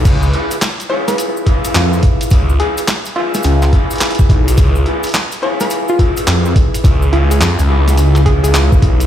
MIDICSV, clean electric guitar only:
0, 0, Header, 1, 2, 480
1, 0, Start_track
1, 0, Tempo, 566038
1, 42, Time_signature, 4, 2, 24, 8
1, 7688, End_track
2, 0, Start_track
2, 0, Title_t, "Clean electric guitar"
2, 0, Program_c, 0, 27
2, 36, Note_on_c, 0, 65, 71
2, 42, Note_on_c, 0, 68, 65
2, 46, Note_on_c, 0, 71, 72
2, 51, Note_on_c, 0, 64, 68
2, 210, Note_off_c, 0, 64, 0
2, 210, Note_off_c, 0, 65, 0
2, 210, Note_off_c, 0, 71, 0
2, 211, Note_off_c, 0, 68, 0
2, 279, Note_on_c, 0, 64, 95
2, 283, Note_on_c, 0, 71, 99
2, 286, Note_on_c, 0, 68, 76
2, 291, Note_on_c, 0, 65, 74
2, 450, Note_off_c, 0, 64, 0
2, 450, Note_off_c, 0, 68, 0
2, 451, Note_off_c, 0, 65, 0
2, 451, Note_off_c, 0, 71, 0
2, 757, Note_on_c, 0, 64, 81
2, 762, Note_on_c, 0, 71, 95
2, 768, Note_on_c, 0, 68, 77
2, 773, Note_on_c, 0, 65, 68
2, 1221, Note_off_c, 0, 64, 0
2, 1222, Note_off_c, 0, 65, 0
2, 1222, Note_off_c, 0, 71, 0
2, 1223, Note_off_c, 0, 68, 0
2, 1236, Note_on_c, 0, 64, 101
2, 1244, Note_on_c, 0, 71, 106
2, 1246, Note_on_c, 0, 68, 75
2, 1252, Note_on_c, 0, 65, 78
2, 1941, Note_off_c, 0, 64, 0
2, 1941, Note_off_c, 0, 68, 0
2, 1942, Note_off_c, 0, 65, 0
2, 1942, Note_off_c, 0, 71, 0
2, 1956, Note_on_c, 0, 65, 67
2, 1962, Note_on_c, 0, 68, 66
2, 1965, Note_on_c, 0, 71, 78
2, 1968, Note_on_c, 0, 64, 65
2, 2130, Note_off_c, 0, 64, 0
2, 2130, Note_off_c, 0, 65, 0
2, 2130, Note_off_c, 0, 68, 0
2, 2130, Note_off_c, 0, 71, 0
2, 2198, Note_on_c, 0, 64, 95
2, 2203, Note_on_c, 0, 71, 96
2, 2204, Note_on_c, 0, 68, 76
2, 2208, Note_on_c, 0, 65, 75
2, 2370, Note_off_c, 0, 64, 0
2, 2370, Note_off_c, 0, 65, 0
2, 2370, Note_off_c, 0, 68, 0
2, 2371, Note_off_c, 0, 71, 0
2, 2680, Note_on_c, 0, 76, 85
2, 2682, Note_on_c, 0, 71, 89
2, 2687, Note_on_c, 0, 68, 78
2, 2690, Note_on_c, 0, 65, 69
2, 3142, Note_off_c, 0, 65, 0
2, 3142, Note_off_c, 0, 71, 0
2, 3142, Note_off_c, 0, 76, 0
2, 3143, Note_off_c, 0, 68, 0
2, 3161, Note_on_c, 0, 64, 99
2, 3164, Note_on_c, 0, 71, 107
2, 3168, Note_on_c, 0, 68, 83
2, 3171, Note_on_c, 0, 65, 82
2, 3862, Note_off_c, 0, 65, 0
2, 3862, Note_off_c, 0, 71, 0
2, 3863, Note_off_c, 0, 64, 0
2, 3863, Note_off_c, 0, 68, 0
2, 3877, Note_on_c, 0, 65, 67
2, 3882, Note_on_c, 0, 68, 69
2, 3886, Note_on_c, 0, 71, 73
2, 3891, Note_on_c, 0, 64, 62
2, 4050, Note_off_c, 0, 64, 0
2, 4050, Note_off_c, 0, 65, 0
2, 4050, Note_off_c, 0, 68, 0
2, 4050, Note_off_c, 0, 71, 0
2, 4118, Note_on_c, 0, 64, 87
2, 4123, Note_on_c, 0, 71, 100
2, 4128, Note_on_c, 0, 68, 77
2, 4133, Note_on_c, 0, 65, 74
2, 4291, Note_off_c, 0, 64, 0
2, 4291, Note_off_c, 0, 65, 0
2, 4291, Note_off_c, 0, 68, 0
2, 4291, Note_off_c, 0, 71, 0
2, 4596, Note_on_c, 0, 64, 83
2, 4602, Note_on_c, 0, 71, 91
2, 4605, Note_on_c, 0, 68, 75
2, 4610, Note_on_c, 0, 65, 68
2, 5061, Note_off_c, 0, 64, 0
2, 5061, Note_off_c, 0, 65, 0
2, 5061, Note_off_c, 0, 68, 0
2, 5061, Note_off_c, 0, 71, 0
2, 5079, Note_on_c, 0, 64, 98
2, 5082, Note_on_c, 0, 71, 105
2, 5084, Note_on_c, 0, 68, 80
2, 5087, Note_on_c, 0, 65, 78
2, 5781, Note_off_c, 0, 64, 0
2, 5781, Note_off_c, 0, 65, 0
2, 5781, Note_off_c, 0, 68, 0
2, 5781, Note_off_c, 0, 71, 0
2, 5795, Note_on_c, 0, 65, 64
2, 5799, Note_on_c, 0, 68, 66
2, 5801, Note_on_c, 0, 71, 74
2, 5807, Note_on_c, 0, 64, 68
2, 5968, Note_off_c, 0, 71, 0
2, 5969, Note_off_c, 0, 64, 0
2, 5969, Note_off_c, 0, 65, 0
2, 5969, Note_off_c, 0, 68, 0
2, 6036, Note_on_c, 0, 64, 84
2, 6039, Note_on_c, 0, 71, 98
2, 6045, Note_on_c, 0, 68, 76
2, 6047, Note_on_c, 0, 65, 73
2, 6209, Note_off_c, 0, 64, 0
2, 6209, Note_off_c, 0, 65, 0
2, 6209, Note_off_c, 0, 71, 0
2, 6210, Note_off_c, 0, 68, 0
2, 6516, Note_on_c, 0, 64, 86
2, 6520, Note_on_c, 0, 71, 86
2, 6523, Note_on_c, 0, 68, 68
2, 6526, Note_on_c, 0, 65, 62
2, 6980, Note_off_c, 0, 64, 0
2, 6980, Note_off_c, 0, 65, 0
2, 6980, Note_off_c, 0, 68, 0
2, 6980, Note_off_c, 0, 71, 0
2, 7000, Note_on_c, 0, 64, 105
2, 7002, Note_on_c, 0, 71, 103
2, 7004, Note_on_c, 0, 68, 79
2, 7010, Note_on_c, 0, 65, 74
2, 7688, Note_off_c, 0, 64, 0
2, 7688, Note_off_c, 0, 65, 0
2, 7688, Note_off_c, 0, 68, 0
2, 7688, Note_off_c, 0, 71, 0
2, 7688, End_track
0, 0, End_of_file